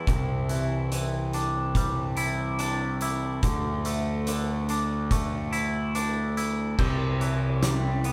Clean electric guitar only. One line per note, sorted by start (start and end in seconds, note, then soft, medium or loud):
0.00 0.49 E3 medium
0.00 0.12 D4 soft
0.00 1.37 E4 medium
0.09 2.18 C3 medium
0.50 0.92 E3 soft
0.92 3.43 E3 medium
1.34 2.59 D4 medium
1.77 3.44 G3 medium
2.17 3.02 E4 medium
2.60 3.44 D4 medium
3.02 3.47 E4 medium
3.44 4.27 D3 medium
3.86 5.10 A3 medium
4.28 6.37 D3 medium
4.70 5.94 D4 medium
5.12 6.79 A3 medium
5.53 6.36 E4 medium
5.95 6.79 D4 medium
6.37 6.79 E4 medium
6.79 8.13 C3 medium
7.21 8.13 E3 soft
7.63 8.13 G3 medium
8.05 8.13 B3 medium